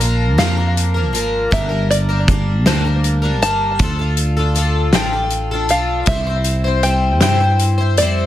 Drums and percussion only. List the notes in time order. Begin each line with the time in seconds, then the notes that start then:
0.01 closed hi-hat
0.38 snare, closed hi-hat
0.77 closed hi-hat
1.15 closed hi-hat
1.52 kick, closed hi-hat
1.91 closed hi-hat
2.28 kick, closed hi-hat
2.66 snare, closed hi-hat
3.04 closed hi-hat
3.42 closed hi-hat
3.79 kick, closed hi-hat
4.17 closed hi-hat
4.55 closed hi-hat
4.93 snare, closed hi-hat
5.30 closed hi-hat
5.69 closed hi-hat
6.06 kick, closed hi-hat
6.44 closed hi-hat
6.83 closed hi-hat
7.21 snare, closed hi-hat
7.59 closed hi-hat
7.97 closed hi-hat